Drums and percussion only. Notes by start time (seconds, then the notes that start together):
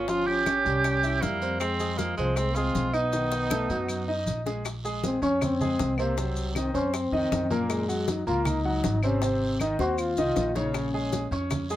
0.08 high bongo, high conga, long guiro, maracas
0.27 high conga
0.46 high bongo, high conga, short guiro, claves, maracas
0.66 high bongo, high conga, short guiro, maracas
0.84 high bongo, long guiro, claves, maracas
1.03 high bongo, high conga, maracas
1.23 high bongo, low bongo, high conga, short guiro, maracas
1.42 high bongo, high conga, short guiro, maracas
1.60 high bongo, high conga, long guiro, claves, maracas
1.80 high conga, maracas
1.99 high bongo, high conga, short guiro, maracas
2.17 high bongo, high conga, short guiro, maracas
2.36 high bongo, high conga, long guiro, claves, maracas
2.56 high bongo, high conga, maracas
2.75 high bongo, low bongo, high conga, short guiro, maracas
2.93 high bongo, high conga, short guiro, claves, maracas
3.13 high bongo, high conga, long guiro, maracas
3.32 high bongo, high conga, maracas
3.50 low bongo, high conga, short guiro, claves, maracas
3.70 high conga, short guiro, maracas
3.88 high conga, long guiro, claves, maracas
4.08 high conga
4.27 high conga, short guiro, maracas
4.46 low bongo, high conga, short guiro, maracas
4.65 high bongo, high conga, long guiro, claves, maracas
4.85 high conga, maracas
5.04 high bongo, high conga, short guiro, maracas
5.22 short guiro, maracas
5.41 high bongo, high conga, low conga, long guiro, claves, maracas
5.61 high conga, low conga, maracas
5.79 high bongo, low bongo, high conga, short guiro, maracas
5.98 short guiro, claves, maracas
6.18 high bongo, high conga, long guiro, maracas
6.36 high conga, maracas
6.55 high bongo, high conga, short guiro, claves, maracas
6.75 high bongo, high conga, short guiro, maracas
6.93 high bongo, high conga, long guiro, claves, maracas
7.13 high bongo, high conga
7.32 high bongo, low bongo, high conga, short guiro, maracas
7.51 high bongo, high conga, short guiro, maracas
7.70 high bongo, high conga, long guiro, claves, maracas
7.89 high conga, maracas
8.08 high bongo, high conga, short guiro, maracas
8.27 short guiro, maracas
8.45 high bongo, high conga, low conga, long guiro, claves, maracas
8.65 high conga
8.84 high bongo, low bongo, high conga, short guiro, maracas
9.03 short guiro, claves, maracas
9.22 high bongo, high conga, long guiro, maracas
9.41 high conga
9.60 low bongo, high conga, short guiro, claves, maracas
9.79 low bongo, high conga, short guiro, maracas
9.98 high conga, long guiro, claves, maracas
10.17 low bongo, high conga, maracas
10.36 low bongo, high conga, short guiro, maracas
10.55 low bongo, high conga, short guiro, maracas
10.74 high bongo, high conga, long guiro, claves, maracas
10.94 high conga
11.13 high bongo, high conga, short guiro, maracas
11.32 short guiro, maracas
11.51 high bongo, high conga, low conga, long guiro, claves, maracas
11.70 high conga, maracas